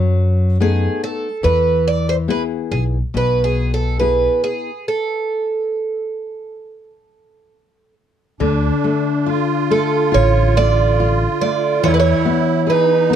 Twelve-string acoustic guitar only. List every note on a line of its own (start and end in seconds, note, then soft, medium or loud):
0.00 0.69 A4 medium
0.62 1.03 G#4 medium
1.04 1.47 A4 medium
1.44 1.87 B4 medium
1.88 2.09 D5 medium
2.09 2.15 C5 loud
2.30 2.42 B4 medium
2.72 2.83 G#4 medium
3.17 3.42 B4 medium
3.44 3.73 G#4 medium
3.74 3.99 A4 medium
4.00 4.43 B4 medium
4.44 4.88 G#4 medium
4.88 7.93 A4 medium
9.71 10.14 A4 medium
10.14 10.57 C#5 loud
10.57 11.40 D5 loud
11.41 11.83 D5 medium
11.84 11.91 C#5 loud
11.94 11.99 B4 medium
12.00 12.69 C#5 medium
12.70 13.13 B4 medium